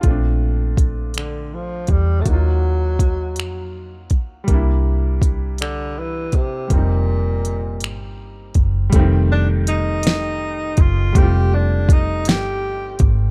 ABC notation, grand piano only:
X:1
M:6/8
L:1/8
Q:3/8=54
K:Fmix
V:1 name="Grand piano"
[A,CDF]6 | [B,EF_G]6 | [G,B,D=E]6 | [G,B,CE]6 |
[E,G,A,C]6 | [G,A,CF]6 |]